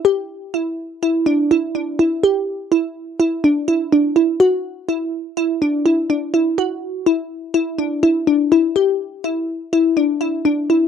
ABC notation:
X:1
M:9/8
L:1/8
Q:3/8=83
K:Em
V:1 name="Synth arpeggio sound"
G2 E2 E D E D E | G2 E2 E D E D E | F2 E2 E D E D E | F2 E2 E D E D E |
G2 E2 E D E D E |]